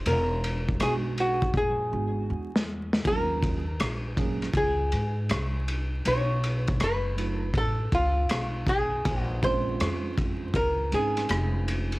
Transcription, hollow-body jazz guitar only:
0.07 0.77 A#4 medium
0.83 0.92 G#4 medium
1.20 1.57 F#4 medium
1.57 2.65 G#4 medium
3.07 4.61 A#4 medium
4.57 5.65 G#4 medium
6.07 6.84 C#5 medium
6.84 7.53 B4 medium
7.58 7.95 A4 medium
7.95 8.71 F4 medium
8.69 9.21 G#4 loud
9.21 9.40 F#4 loud
9.44 10.52 C5 loud
10.56 10.94 A#4 medium
10.94 11.65 G#4 medium

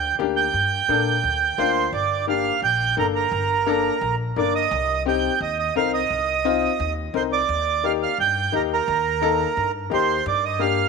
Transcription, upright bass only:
0.00 0.12 D2 loud
0.20 0.47 D2 medium
0.54 0.82 G2 medium
0.88 1.16 A#2 medium
1.24 1.51 D2 medium
1.58 1.86 D2 medium
1.93 2.48 G1 medium
2.62 2.90 A#1 medium
2.97 3.25 G1 medium
3.31 3.87 G1 medium
4.01 4.29 A#1 medium
4.36 4.64 G1 medium
4.71 5.27 C2 loud
5.41 5.68 D#2 medium
5.76 6.03 C2 medium
6.10 6.66 C2 medium
6.80 7.07 D#2 loud
7.14 7.42 C2 medium
7.49 8.04 D#2 loud
8.18 8.46 G2 medium
8.53 8.81 D#2 medium
8.88 9.43 D#2 loud
9.57 9.84 G2 medium
9.91 10.19 D#2 medium
10.26 10.81 G2 loud

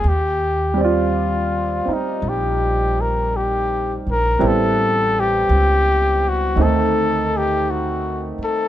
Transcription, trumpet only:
0.00 0.10 G#4 medium
0.09 0.80 G4 medium
0.84 1.95 F4 medium
1.93 2.30 D#4 medium
2.28 3.02 G4 medium
3.01 3.38 A#4 medium
3.36 3.96 G4 medium
4.11 4.49 A#4 medium
4.47 5.21 A4 medium
5.20 6.30 G4 medium
6.29 6.64 F#4 medium
6.62 7.39 A4 medium
7.37 7.72 G4 medium
7.71 8.30 F#4 medium
8.44 8.68 A4 medium

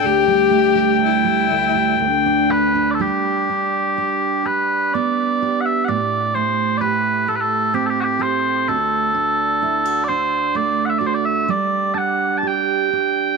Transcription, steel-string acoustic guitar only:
0.00 0.27 D4 medium
0.00 0.14 G4 medium
0.00 0.31 A4 medium
0.04 1.49 D2 medium
0.28 0.74 G3 soft
0.51 2.09 A3 medium
0.75 1.23 G3 medium
0.99 2.09 A4 medium
1.24 1.73 G3 soft
1.51 1.98 D2 medium
1.75 2.10 G3 medium
1.99 3.09 D2 medium
2.26 2.74 D4 soft
2.50 3.00 A4 medium
2.75 3.49 D4 soft
2.99 5.91 G3 medium
2.99 3.97 G4 medium
3.49 4.44 D4 medium
3.98 5.42 G4 medium
4.46 5.97 D4 soft
4.95 5.97 B3 medium
5.42 5.88 G4 medium
5.88 8.67 A2 medium
5.88 6.80 G4 soft
6.36 7.27 A3 soft
6.81 8.18 G4 medium
7.28 9.14 A3 soft
7.74 8.76 C4 medium
8.19 8.66 G4 medium
8.68 11.48 D2 medium
8.68 9.62 F#4 medium
9.15 10.09 D4 medium
9.62 9.85 E4 medium
9.85 10.99 F#4 soft
10.09 11.94 D4 medium
10.55 11.57 A3 medium
11.01 11.47 F#4 medium
11.48 13.37 G3 medium
11.48 12.43 G4 medium
11.94 12.93 D4 soft
12.43 13.37 G4 medium
12.93 13.37 D4 soft

